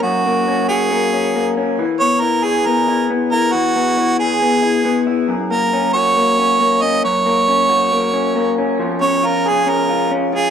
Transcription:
<<
  \new Staff \with { instrumentName = "Harmonica" } { \time 4/4 \key fis \major \tempo 4 = 137 fis'4. gis'2 r8 | r8 cis''8 ais'8 gis'8 ais'4 r8 ais'8 | fis'4. gis'2 r8 | r8 ais'4 cis''2 dis''8 |
cis''2.~ cis''8 r8 | r8 cis''8 ais'8 gis'8 ais'4 r8 gis'8 | }
  \new Staff \with { instrumentName = "Clean electric guitar" } { \time 4/4 \key fis \major <fis, ais cis' fis'>8 ais8 cis'8 fis'8 ais8 cis'8 ais8 cis'8 | e8 b8 e'8 gis'8 b8 e'8 b8 e'8 | e8 b8 e'8 gis'8 b8 e'8 b8 e'8 | fis,8 ais8 cis'8 fis'8 ais8 cis'8 ais8 cis'8 |
fis,8 ais8 cis'8 fis'8 ais8 cis'8 ais8 cis'8 | eis8 cis'8 eis'8 gis'8 cis'8 eis'8 cis'8 eis'8 | }
>>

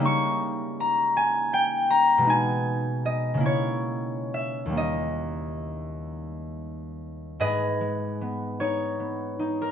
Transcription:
<<
  \new Staff \with { instrumentName = "Harp" } { \time 6/8 \key gis \minor \tempo 4. = 51 << { <cis'' cis'''>4 ais''8 gis''8 g''8 ais''8 | gis''4 dis''8 cis''4 e''8 | dis''2. | dis''4. cis''4~ cis''16 ais'16 | } \\ { r2. | r2. | r2. | <gis' b'>2. | } >> }
  \new Staff \with { instrumentName = "Harp" } { \time 6/8 \key gis \minor << { r2. | r2. | r2. | gis,8 gis8 b8 dis'8 b8 dis'8 | } \\ { <cis g ais dis'>2. | <b, gis b dis'>4. <cis ais e'>4. | <dis, g ais dis'>2.~ | <dis, g ais dis'>2. | } >> }
>>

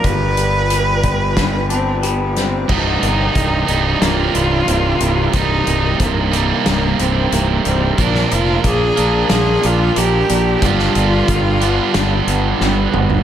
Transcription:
<<
  \new Staff \with { instrumentName = "Analog synth pad" } { \time 4/4 \key c \minor \tempo 4 = 91 << { <b' g''>1 | <bes' g''>1~ | <bes' g''>1 | <bes' bes''>1 |
<b' g''>1 | } \\ { <f' d''>1 | <ees' c''>1~ | <ees' c''>1 | <f' d''>1~ |
<f' d''>1 | } >> }
  \new Staff \with { instrumentName = "Cello" } { \time 4/4 \key c \minor b'2~ b'8 c'8 b8 c'8 | ees'2 f'2 | ees'4 bes4. c'8 bes8 c'8 | d'8 f'8 aes'4 aes'8 f'8 g'4 |
f'2. r4 | }
  \new Staff \with { instrumentName = "Clean electric guitar" } { \clef bass \time 4/4 \key c \minor g,8 g4 g4 d'8 g4 | c,8 g,8 c8 g8 bes8 g8 c8 g8 | c,8 g,8 c8 g8 bes8 g8 c8 g8 | bes,8 f8 bes8 d'8 f'8 d'8 bes8 d'8 |
g,8 d8 g8 b8 d'8 b8 g8 b8 | }
  \new Staff \with { instrumentName = "Distorted electric guitar" } { \clef bass \time 4/4 \key c \minor r1 | <c, g, c g bes ees'>4. <c, g, c g bes ees'>2~ <c, g, c g bes ees'>8 | <c, g, c g bes ees'>4. <c, g, c g bes ees'>2~ <c, g, c g bes ees'>8 | <bes, f bes d' f' bes'>4. <bes, f bes d' f' bes'>2~ <bes, f bes d' f' bes'>8 |
<g, d g b d' g'>4. <g, d g b d' g'>2~ <g, d g b d' g'>8 | }
  \new Staff \with { instrumentName = "Fingered electric bass" } { \clef bass \time 4/4 \key c \minor g,,1 | c,,8 g,,8 c,,8 c,,8 c,,8 c,,8 c,,8 c,,8 | c,,8 c,,8 c,,4 c,,8 c,,8 c,,8 c,,8 | bes,,8 f,,8 bes,,8 bes,,8 bes,,8 bes,,8 bes,,8 bes,,8 |
g,,8 g,,8 g,,4 g,,8 g,,8 g,,8 g,,8 | }
  \new DrumStaff \with { instrumentName = "Drums" } \drummode { \time 4/4 <hh bd>8 hh8 hh8 <hh bd>8 <hh bd sn>8 hh8 hh8 <hh sn>8 | <cymc bd>8 hh8 <hh bd>8 hh8 <hh sn>8 hh8 hh8 hh8 | <hh bd>8 hh8 <hh bd>8 hh8 <hh sn>8 hh8 hh8 hh8 | <hh bd>16 sn16 hh8 <hh bd>8 hh8 <hh sn>8 hh8 hh8 hh8 |
<hh bd>16 sn16 hh8 <hh bd>8 hh8 <hh sn>8 hh8 sn8 toml16 tomfh16 | }
>>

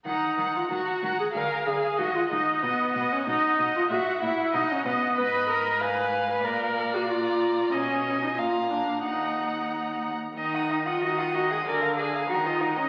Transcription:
<<
  \new Staff \with { instrumentName = "Violin" } { \time 2/4 \key ees \minor \tempo 4 = 94 bes''8 bes''8 bes''8 bes''8 | aes''8 aes''8 ges''8 ges''8 | fis''8 fis''8 fis''8 fis''8 | ges''8 ges''8 fis''8 fis''8 |
ces'''4 aes''4 | f''4 bes''4 | aes''4 bes''4 | bes''4.~ bes''16 r16 |
bes''16 ees'''16 bes''16 ees'''16 bes''16 ees'''16 bes''16 ees'''16 | aes''16 bes''16 aes''16 bes''16 ges''16 bes''16 ges''16 bes''16 | }
  \new Staff \with { instrumentName = "Violin" } { \time 2/4 \key ees \minor ges''8 ges''8 ges''8 ges''8 | f''8 f''8 ees''8 ees''8 | dis''8 dis''8 dis''8 dis''8 | fes''8 fes''8 dis''8 dis''8 |
ees''4 f''4 | d''2 | ees''4 f''4 | ges''4.~ ges''16 r16 |
ees''16 ges''16 ees''16 ges''16 ees''16 ges''16 ees''16 ges''16 | d''16 f''16 d''16 f''16 bes'16 ees''16 bes'16 ees''16 | }
  \new Staff \with { instrumentName = "Viola" } { \time 2/4 \key ees \minor ees'8. f'16 ges'8. aes'16 | bes'8 aes'8 ges'16 f'16 ees'8 | b8. des'16 dis'8. f'16 | ges'8 fes'8 dis'16 des'16 b8 |
ces''8 bes'8 ces''8. ces''16 | bes'8. ges'16 f'4 | des'8. ees'16 f'8 d'8 | ees'4. r8 |
ees4 ees4 | d4 ees4 | }
  \new Staff \with { instrumentName = "Cello" } { \clef bass \time 2/4 \key ees \minor ees8 ees8 ees8 ees8 | d8 d8 ees8 ees8 | b,8 b,8 b,8 b,8 | bes,8 bes,8 b,8 b,8 |
aes,2 | bes,2 | ces4 bes,4 | ees,4. r8 |
ees'8. f'16 ges'16 f'16 ges'16 aes'16 | bes'8 aes'8 ges'16 f'16 ees'16 des'16 | }
>>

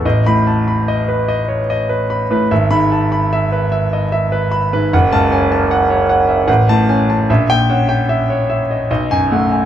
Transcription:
<<
  \new Staff \with { instrumentName = "Grand piano" } { \time 3/4 \key e \major \tempo 4 = 74 << { r16 b''8 r2 r16 | r16 b''8 r2 r16 | r16 a''8 r4. a''8 r16 | r16 g''8 r4. gis''8 r16 | } \\ { dis''8 a''16 b''16 dis''16 b'16 dis''16 cis''16 dis''16 b'16 b''16 b'16 | e''8 a''16 b''16 e''16 b'16 e''16 dis''16 e''16 b'16 b''16 b'16 | fis''8 gis''16 a''16 fis''16 cis''16 fis''16 e''16 fis''8 gis''16 a''16 | e''8 fis''16 g''16 e''16 cis''16 e''16 dis''16 dis''8 fis''16 gis''16 | } >> }
  \new Staff \with { instrumentName = "Grand piano" } { \clef bass \time 3/4 \key e \major a,,16 a,8 r2 a,16 | gis,,16 gis,8 r2 gis,16 | fis,,16 cis,16 cis'8 r4 a,,16 a,16 cis'8 | ais,,16 ais,16 cis'8 r4 b,,16 fis,16 a8 | }
>>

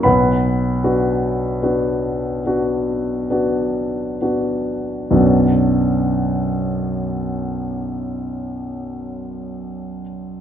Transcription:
\new Staff \with { instrumentName = "Grand piano" } { \time 3/4 \key b \minor \tempo 4 = 34 << { <b' fis'' b''>2~ <b' fis'' b''>8 r8 | <b,, fis, fis b d' fis'>2. | } \\ { b,,8 <b d' fis'>8 <b d' fis'>8 <b d' fis'>8 <b d' fis'>8 <b d' fis'>8 | r2. | } >> }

